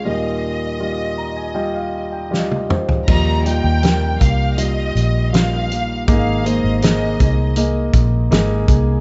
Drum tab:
CC |----------------|x---------------|----------------|
HH |----------------|--x-x-x-x-x-x-x-|x-x-x-x-x-x-x-x-|
SD |------------o---|----o-------o---|----o-------o---|
T1 |-------------o--|----------------|----------------|
T2 |--------------o-|----------------|----------------|
FT |---------------o|----------------|----------------|
BD |----------------|o-----o---------|o-----o---o---o-|